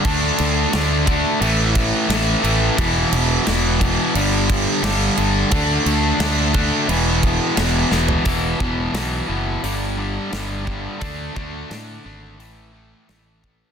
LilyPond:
<<
  \new Staff \with { instrumentName = "Overdriven electric guitar" } { \clef bass \time 4/4 \key e \minor \tempo 4 = 87 <d a d'>4 <d a d'>8 <d a d'>8 <a, e a>4 <a, e a>8 <a, e a>8 | <e, b, e>4 <e, b, e>8 <e, b, e>8 <g, d g>4 <g, d g>8 <g, d g>8 | <d a d'>4 <d a d'>8 <d a d'>8 <e, b, e>4 <e, b, e>8 <e, b, e>8 | <e, b, e>8 <e, b, e>8 <e, b, e>8 <e, b, e>8 <g, d g>8 <g, d g>8 <g, d g>8 <g, d g>8 |
<d a d'>8 <d a d'>8 <d a d'>8 <d a d'>8 <a, e a>8 <a, e a>8 <a, e a>8 <a, e a>8 | }
  \new Staff \with { instrumentName = "Fingered electric bass" } { \clef bass \time 4/4 \key e \minor d,8 d,8 d,4 a,,4 a,,8 a,,8 | e,,8 e,,8 e,,4 g,,4 g,,8 g,,8 | d,8 d,8 d,4 e,,4 e,,8 e,,8 | e,,8 e,,8 b,,8 fis,,8 g,,4 g,,4 |
d,8 d,8 a,8 gis,,8 a,,4 a,,4 | }
  \new DrumStaff \with { instrumentName = "Drums" } \drummode { \time 4/4 <cymc bd>8 cymc8 <cymc sn>8 <cymc bd>8 cymc8 <cymc bd>8 <cymc sn>8 cymc8 | <cymc bd>8 cymc8 <cymc sn>8 <cymc bd>8 cymc8 <cymc bd>8 <cymc sn>8 cymc8 | <cymc bd>8 cymc8 <cymc sn>8 <cymc bd>8 cymc8 <cymc bd>8 <cymc sn>8 sn16 tomfh16 | <hho bd>8 bd8 <hho sn>4 hho4 <hho sn>8 bd8 |
<hho bd>8 bd8 <hho sn>4 hho4 <hho sn>8 bd8 | }
>>